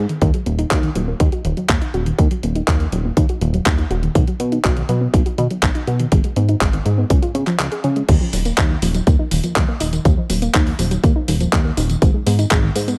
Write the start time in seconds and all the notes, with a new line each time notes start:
0.09 D#3, closed hi-hat
0.22 D#2 D#3, kick, closed hi-hat
0.34 F#3, closed hi-hat
0.46 D#1 A#3, closed hi-hat
0.58 D#4, closed hi-hat
0.71 D#2 F#4, kick, clap, closed hi-hat
0.83 D#3, closed hi-hat
0.95 D#1 F#3, closed hi-hat
1.08 A#3
1.20 D#2 D#4, kick, closed hi-hat
1.32 F#4, closed hi-hat
1.45 D#1 D#3, closed hi-hat
1.57 F#3, closed hi-hat
1.69 D#2 A#3, kick, clap, closed hi-hat
1.82 D#4, closed hi-hat
1.94 D#1 F#4, closed hi-hat
2.06 D#3, closed hi-hat
2.18 D#2 D#3, kick, closed hi-hat
2.31 F#3, closed hi-hat
2.43 D#1 A#3, closed hi-hat
2.56 D#4, closed hi-hat
2.68 D#2 F#4, kick, clap, closed hi-hat
2.80 D#3, closed hi-hat
2.92 D#1 F#3, closed hi-hat
3.05 A#3
3.17 D#2 D#4, kick, closed hi-hat
3.29 F#4, closed hi-hat
3.41 D#1 D#3, closed hi-hat
3.54 F#3, closed hi-hat
3.66 D#2 A#3, kick, clap, closed hi-hat
3.78 D#4, closed hi-hat
3.90 D#1 F#4, closed hi-hat
4.03 D#3, closed hi-hat
4.15 B1 D#3, kick, closed hi-hat
4.28 F#3, closed hi-hat
4.40 B2 B3, closed hi-hat
4.52 D#4, closed hi-hat
4.64 B1 F#4, kick, clap, closed hi-hat
4.76 D#3, closed hi-hat
4.89 B2 F#3, closed hi-hat
5.01 B3
5.13 B1 D#4, kick, closed hi-hat
5.26 F#4, closed hi-hat
5.38 B2 D#3, closed hi-hat
5.51 F#3, closed hi-hat
5.63 B1 B3, kick, clap, closed hi-hat
5.75 D#4, closed hi-hat
5.87 B2 F#4, closed hi-hat
6.00 D#3, closed hi-hat
6.12 G#1 D#3, kick, closed hi-hat
6.24 G#3, closed hi-hat
6.36 G#2 B3, closed hi-hat
6.49 D#4, closed hi-hat
6.61 G#1 G#4, kick, clap, closed hi-hat
6.73 D#3, closed hi-hat
6.85 G#2 G#3, closed hi-hat
6.98 B3
7.10 C#2 C#4, kick, closed hi-hat
7.22 F4, closed hi-hat
7.35 C#3 C#4, closed hi-hat
7.47 F3, clap, closed hi-hat
7.59 C#2 F3, clap, closed hi-hat
7.72 G#4, closed hi-hat
7.84 C#3, closed hi-hat
7.96 G#3, closed hi-hat
8.09 D#2 D#3, kick, closed hi-hat, tambourine, crash
8.21 F3
8.33 D#1 F#3, open hi-hat, tambourine
8.45 A#3, closed hi-hat, tambourine
8.58 D#2 D#4, kick, clap, closed hi-hat, tambourine
8.70 D#3
8.82 D#1 F3, open hi-hat, tambourine
8.94 F#3, closed hi-hat, tambourine
9.07 D#2 A#3, kick, closed hi-hat, tambourine
9.19 D#4
9.31 D#1 D#3, open hi-hat, tambourine
9.44 F3, closed hi-hat, tambourine
9.56 D#2 F#3, kick, clap, closed hi-hat, tambourine
9.68 A#3
9.80 D#1 D#4, open hi-hat, tambourine
9.93 D#3, closed hi-hat, tambourine
10.05 D#2 D#3, kick, closed hi-hat, tambourine
10.17 F3
10.30 D#1 F#3, open hi-hat, tambourine
10.42 A#3, closed hi-hat, tambourine
10.54 D#2 D#4, kick, clap, closed hi-hat, tambourine
10.66 D#3, open hi-hat
10.79 D#1 F3, open hi-hat, tambourine
10.91 F#3, closed hi-hat, tambourine
11.03 D#2 A#3, kick, closed hi-hat, tambourine
11.16 D#4
11.28 D#1 D#3, open hi-hat, tambourine
11.40 F3, closed hi-hat, tambourine
11.53 D#2 F#3, kick, clap, closed hi-hat, tambourine
11.65 A#3
11.77 D#1 D#4, open hi-hat, tambourine
11.89 D#3, closed hi-hat, tambourine
12.02 G#1 D#3, kick, closed hi-hat, tambourine
12.14 G#3
12.26 G#2 B3, open hi-hat, tambourine
12.39 D#4, closed hi-hat, tambourine
12.51 G#1 G#4, kick, clap, closed hi-hat, tambourine
12.63 D#3
12.75 G#2 G#3, open hi-hat, tambourine
12.88 B3, closed hi-hat, tambourine